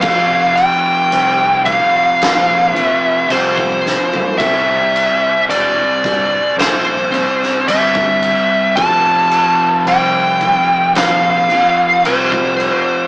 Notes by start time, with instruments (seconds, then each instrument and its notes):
0.01 fingered electric bass F1, distorted electric guitar F2 C3 F3, lead electric guitar F5, kick, crash
0.56 lead electric guitar G5, crash
1.12 fingered electric bass C2, crash
1.65 lead electric guitar F5, kick, crash
2.22 fingered electric bass A#1, snare, crash
2.74 distorted electric guitar F2 C3 F3, lead electric guitar E5, crash
3.29 fingered electric bass C2, distorted electric guitar F2 C3 F3, lead electric guitar C5, crash
3.58 kick
3.86 snare
4.14 floor tom
4.38 fingered electric bass C2, distorted electric guitar C3 G3, lead electric guitar E5, kick, crash
4.42 distorted electric guitar C4
4.96 crash
5.50 fingered electric bass E1, lead electric guitar D5, crash
6.04 fingered electric bass G1, kick, crash
6.57 fingered electric bass A#1, lead electric guitar C5, snare, crash
7.11 distorted electric guitar C3 G3 C4, crash
7.43 snare
7.67 fingered electric bass G1, distorted electric guitar C3 G3, lead electric guitar E5, crash
7.71 distorted electric guitar C4
7.95 kick
8.23 crash
8.76 fingered electric bass F1, distorted electric guitar F2 C3, lead electric guitar A5, kick, crash
8.80 distorted electric guitar F3
9.32 crash
9.85 fingered electric bass C2, lead electric guitar G5, crash
10.41 kick, crash
10.95 fingered electric bass A#1, lead electric guitar F5, snare, crash
11.50 distorted electric guitar F2 C3 F3, crash
12.04 fingered electric bass C2, distorted electric guitar F2 C3 F3, lead electric guitar C5, crash
12.32 kick
12.60 crash